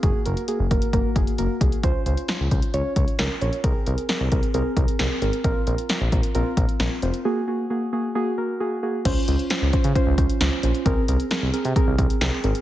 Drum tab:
CC |----------------|----------------|----------------|----------------|
HH |x-xxx-xxx-xxx-xx|x-xxx-xxx-xxx-xx|x-xxx-xxx-xxx-xx|x-xxx-xxx-xxx-xx|
SD |----------------|----o-------o---|----o-------o---|----o-------o---|
BD |o-----o-o-o---o-|o-----o---o-----|o-----o---o-----|o-----o---o-----|

CC |----------------|x---------------|----------------|
HH |----------------|x-xxx-xxx-xxx-xx|x-xxx-xxx-xxx-xx|
SD |----------------|----o-------o---|----o-------o---|
BD |----------------|o-----o-o-o-----|o-------o-o-----|